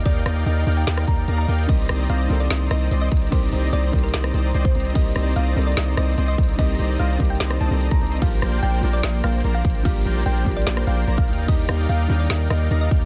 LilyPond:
<<
  \new Staff \with { instrumentName = "Synth pluck" } { \time 4/4 \key c \dorian \tempo 4 = 147 d''8 r8 ees''8 r16 g''8 r16 bes''8 r16 bes''8 r16 | ees''8 r8 f''8 r16 d''8 r16 ees''8 r16 ees''8 r16 | c''8 r8 d''8 r16 bes'8 r16 c''8 r16 c''8 r16 | ees''8 r8 f''8 r16 d''8 r16 ees''8 r16 ees''8 r16 |
ees''8 r8 f''8 r16 g''8 r16 a''8 r16 bes''8 r16 | f''8 r8 g''8 r16 d''8 r16 f''8 r16 f''8 r16 | f''8 r8 g''8 r16 d''8 r16 f''8 r16 f''8 r16 | ees''8 r8 f''8 r16 d''8 r16 ees''8 r16 ees''8 r16 | }
  \new Staff \with { instrumentName = "Supersaw synth" } { \time 4/4 \key c \dorian <ees' bes' d'' f'' g''>8 <ees' bes' d'' f'' g''>8 <ees' bes' d'' f'' g''>8 <ees' bes' d'' f'' g''>8 <ees' bes' d'' f'' g''>8 <bes' d''>8 <ees' bes' d'' f'' bes''>8 <ees' bes' d'' f'' g''>8 | <c' c''>8 <c' c'' d'' ees'' bes''>8 <c' c'' d'' ees'' bes''>8 <c' c'' d'' ees'' bes''>8 <c' d''>8 <c' c'' d'' ees'' bes''>8 <c' c'' d'' ees'' c'''>8 <c' d'' ees'' bes''>8 | <c' c'' d'' ees'' bes''>8 <c' c'' d'' ees'' bes''>8 <c' c'' d'' ees'' bes''>8 <c' d'' ees'' bes''>8 <c' c'' d'' ees'' bes''>8 <c' c'' d'' ees'' bes''>8 <c' c'' d'' ees'' c'''>8 <c' c'' d'' ees'' bes''>8 | r8 <c' c'' d'' ees'' bes''>8 <c' c'' d'' ees'' bes''>8 <c' c'' d'' ees'' bes''>8 <c' c'' d'' ees'' bes''>8 <c' c'' d'' ees'' bes''>8 <c' c'' d'' ees'' c'''>8 <c' c''>8 |
<c' c'' d'' ees'' bes''>8 <c' c'' d'' ees'' bes''>8 <c' c'' d'' ees'' bes''>8 <c' c'' d'' ees'' bes''>8 <c' c'' d'' ees'' bes''>8 <c' c'' d'' ees'' a''>16 <c' c'' d'' ees'' bes''>8 <c' c'' d'' ees'' bes''>16 <c' c'' d'' ees'' bes''>8 | <bes bes' c'' d'' g''>8 <bes bes' c'' d'' g''>8 <bes bes' c'' d'' g''>8 <bes bes' c'' d'' g''>8 <bes bes' c'' d'' g''>8 <bes bes' c'' d'' g''>8 <bes bes' c'' d'' bes''>8 <bes bes' c'' d''>8 | <bes bes' d''>8 <bes bes' c'' d'' g''>8 <bes bes' c'' d'' g''>8 <bes bes' c'' d'' g''>8 <bes bes' d'' g''>8 <bes bes' c'' d'' g''>8 <bes bes' c'' d'' bes''>8 <ees' bes' d'' f'' g''>8 | <ees' bes'>8 <ees' bes' d'' f'' g''>8 <ees' bes' d'' f'' g''>8 <ees' bes' d'' f'' g''>8 <ees' bes' d'' g''>8 <ees' bes' d'' f'' g''>8 <ees' bes' d'' f'' bes''>8 <ees' bes' d'' f'' g''>8 | }
  \new Staff \with { instrumentName = "Felt piano" } { \time 4/4 \key c \dorian r1 | <ees g bes c' g'>4. <ees g bes c' a'>2~ <ees g bes c' a'>8 | <ees g bes c' g'>4. <ees g bes c' g'>2~ <ees g bes c' g'>8 | <ees g bes c' g'>4. <ees g bes c' a'>2~ <ees g bes c' a'>8 |
<ees g bes c' g'>4. <ees g bes c' g'>4~ <ees g bes c' g'>16 <ees g bes c' a'>4~ <ees g bes c' a'>16 | <f g bes d' g'>4. <f g bes d' bes'>2~ <f g bes d' bes'>8 | <f g bes d' g'>4. <f g bes d' g'>2 r8 | <ees g bes d' g'>4. <ees g bes d' bes'>2~ <ees g bes d' bes'>8 | }
  \new Staff \with { instrumentName = "808-style bass" } { \clef bass \time 4/4 \key c \dorian ees,8 ees,8 ees,8 ees,8 ees,8 ees,8 ees,8 ees,8 | c,8 c,8 c,8 c,8 c,8 c,8 c,8 c,8 | c,8 c,8 c,8 c,8 c,8 c,8 c,8 c,8 | c,8 c,8 c,8 c,8 c,8 c,8 c,8 c,8 |
c,8 c,8 c,8 c,8 c,8 c,16 c,8 c,16 c,8 | bes,,8 bes,,8 bes,,8 bes,,8 bes,,8 bes,,8 bes,,8 bes,,8 | bes,,8 bes,,8 bes,,8 bes,,8 bes,,8 bes,,8 bes,,8 ees,8 | ees,8 ees,8 ees,8 ees,8 ees,8 ees,8 ees,8 ees,8 | }
  \new DrumStaff \with { instrumentName = "Drums" } \drummode { \time 4/4 <hh bd>8 <hh ss>8 hh8 hh32 hh32 hh32 hh32 <hh sn>16 ss16 <hh bd>8 hh8 hh32 hh32 hh32 hh32 | <cymc hh bd>8 <hh ss>8 hh8 hh32 hh32 hh32 hh32 <hh sn>8 <hh ss>8 hh8 <hh bd>32 hh32 hh32 hh32 | <cymc hh bd>8 hh8 hh8 <hh bd>32 hh32 hh32 hh32 <hh sn>16 ss16 hh8 hh16 bd16 hh32 hh32 hh32 hh32 | <cymc hh bd>8 <hh ss>8 hh8 hh32 hh32 hh32 hh32 <hh sn>8 <hh ss>8 hh8 <hh bd>32 hh32 hh32 hh32 |
<cymc hh bd>8 hh8 hh8 <hh bd>32 hh32 hh32 hh32 <hh sn>16 ss16 hh8 hh16 bd16 hh32 hh32 hh32 hh32 | <cymc hh bd>8 <hh ss>8 hh8 hh32 hh32 hh32 hh32 sn8 <hh ss>8 hh8 <hh bd>32 hh32 hh32 hh32 | <cymc hh bd>8 hh8 hh8 <hh bd>32 hh32 hh32 hh32 <hh sn>16 ss16 hh8 hh16 bd16 hh32 hh32 hh32 hh32 | <cymc hh bd>8 <hh ss>8 hh8 hh32 hh32 hh32 hh32 <hh sn>8 <hh ss>8 hh8 <hh bd>32 hh32 hh16 | }
>>